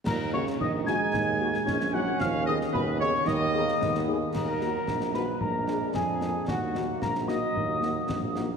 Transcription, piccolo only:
\new Staff \with { instrumentName = "Piccolo" } { \time 2/4 \key ees \minor \tempo 4 = 112 bes''8 des'''8 ees'''8 aes'''8~ | aes'''4. ges'''8 | f'''8 ees'''8 ces'''8 des'''8 | ees'''4. r8 |
bes''4. ces'''8 | bes''4 aes''4 | ges''4 bes''8 ees'''8~ | ees'''4. r8 | }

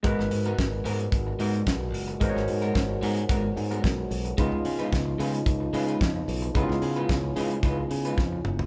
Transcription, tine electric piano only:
\new Staff \with { instrumentName = "Tine electric piano" } { \time 4/4 \key gis \dorian \tempo 4 = 111 <gis fis' ais' b'>1 | <gis fis' ais' bis' cis''>1 | <cis b dis' eis'>1 | <cis b dis' e' eis'>1 | }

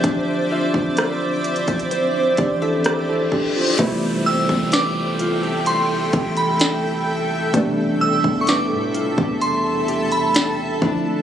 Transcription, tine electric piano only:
<<
  \new Staff \with { instrumentName = "Tine electric piano" } { \time 4/4 \key a \minor \tempo 4 = 64 r2 r8 <d' g'>16 <e' a'>16 <g' c''>16 <e' a'>16 <d' g'>16 <c' f'>16~ | <c' f'>16 r2. r8. | r1 | }
  \new Staff \with { instrumentName = "Tine electric piano" } { \time 4/4 \key a \minor <d f c' g'>2.~ <d f c' g'>8 r8 | <c g a b e'>1 | <b, c g a b d'>2.~ <b, c g a b d'>8 <d f a c' e'>8 | }
>>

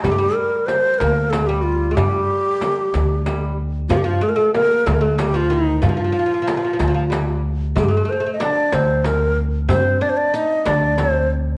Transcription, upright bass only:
\new Staff \with { instrumentName = "Upright bass" } { \clef bass \time 6/8 \tempo 4. = 62 g,8 r4 d,4. | g,8 r4 d,4. | g,8 r4 d,4. | g,8 r4 d,4. |
g,8 r4 d,4. | g,8 r4 d,4. | }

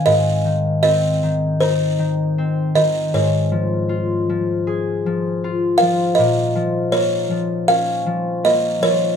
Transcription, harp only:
\new Staff \with { instrumentName = "Harp" } { \clef bass \time 4/4 \key aes \major \tempo 4 = 79 aes,8 ees8 c'8 ees8 ees'8 ees8 c'8 ees8 | aes,8 f8 f'8 f8 aes'8 f8 f'8 f8 | bes,8 f8 bes8 f8 des'8 f8 bes8 f8 | }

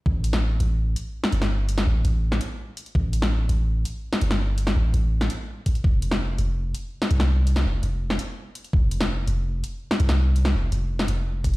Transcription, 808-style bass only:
\new Staff \with { instrumentName = "808-style bass" } { \clef bass \time 4/4 \key g \mixolydian \tempo 4 = 166 a,,4. a,,4 r4 g,,8~ | g,,4 a,,8 a,,4 r4. | a,,4. a,,4 r4 g,,8~ | g,,4 a,,8 a,,4 r4. |
f,,4. f,,4 r4 c,8~ | c,4 f,,8 f,,4 r4. | f,,4. f,,4 r4 c,8~ | c,4 f,,8 f,,4 f,,4 f,,8 | }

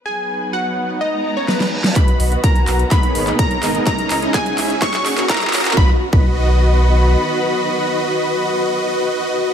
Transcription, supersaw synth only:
\new Staff \with { instrumentName = "Supersaw synth" } { \time 4/4 \key b \major \tempo 4 = 126 r1 | <fis' b' dis''>8 r16 <fis' b' dis''>16 <fis' b' gis''>8 <fis' b' fis''>16 r16 <b dis' gis' ais' fis''>16 <b dis' gis' ais' cis''>8 <b dis' gis' ais' dis''>16 <b dis' gis' ais' cis''>16 r16 <b dis' gis' ais' dis''>16 <b dis' gis' ais' dis''>16 | <cis' dis' e' gis' dis''>8 r16 <cis' dis' e' gis' dis''>16 <cis' dis' e' gis' fis''>8 <cis' dis' e' gis' e''>16 r16 <cis' fis' cis''>16 <cis' fis' gis'>8 <cis' fis' ais'>16 <cis' fis' gis'>16 r16 <cis' fis' ais'>16 <cis' fis' ais'>16 | <fis' b' dis''>16 r8 <fis' b' dis''>2.~ <fis' b' dis''>16~ |
<fis' b' dis''>1 | }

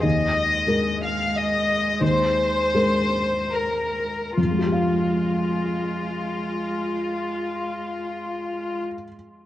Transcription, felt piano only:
\new Staff \with { instrumentName = "Felt piano" } { \time 3/4 \key f \minor \tempo 4 = 70 ees,4 <aes aes' bes'>2 | ees,4 <aes aes' bes'>2 | <f, f aes f' g' f''>2.~ | <f, f aes f' g' f''>2. | }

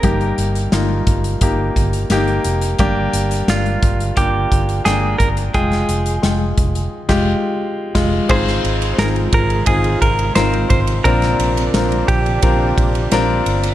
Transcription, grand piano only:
<<
  \new Staff \with { instrumentName = "Grand piano" } { \time 4/4 \key aes \lydian \tempo 4 = 87 <bes ees' g'>8. r16 <bes ees' f'>8. r16 <bes ees' g'>8. r16 <bes ees' g'>8. r16 | <bes d' g'>8. r16 <bes d' g'>8. r16 <bes d' f'>8. r16 <bes d' g''>8. r16 | <aes f' g''>8. r16 <aes f' g''>8. r8 <aes f' g'>8 r8. <aes f'>8 | <c' ees' f' aes'>8. r16 <c' ees' f' aes'>8. r16 <c' ees' f' aes'>8. r16 <c' ees' f' bes'>8. r16 |
<c' d' f' bes'>8. r16 <c' d' f' bes'>8. r16 <c' d' f' bes'>8. r16 <c' d' f' bes'>8. r16 | }
  \new Staff \with { instrumentName = "Grand piano" } { \clef bass \time 4/4 \key aes \lydian g,4. r2 r8 | g,4. r2 r8 | r1 | aes,4. r2 r8 |
bes,4. r2 r8 | }
>>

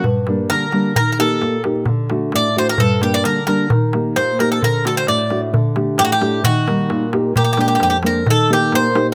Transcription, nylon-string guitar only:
\new Staff \with { instrumentName = "Nylon-string guitar" } { \time 2/4 \tempo 4 = 131 g,8 <g bes d'>8 d8 <g bes d'>8 | ees8 <bes ees' g'>8 bes,8 <bes ees' g'>8 | d8 <a d' fis'>8 a,8 <a d' fis'>8 | g,8 <g bes d'>8 d8 <g bes d'>8 |
ees8 <bes ees' g'>8 bes,8 <bes ees' g'>8 | d8 <a d' fis'>8 a,8 <a d' fis'>8 | d8 <a d' g'>8 a,8 <a d' g'>8 | ees8 <g bes ees'>8 bes,8 <bes ees' g'>8 |
bes,8 <aes bes d'>8 f,8 <aes bes d'>8 | ees8 <bes ees' g'>8 bes,8 <bes ees' g'>8 | }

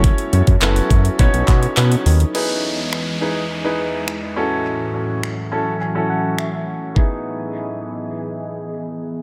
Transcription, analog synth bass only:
\new Staff \with { instrumentName = "Analog synth bass" } { \clef bass \time 4/4 \key e \major \tempo 4 = 104 fis,,8 fis,16 fis,16 fis,,8 fis,8 b,,16 b,,16 b,8 b,8 dis,8 | r1 | r1 | r1 | }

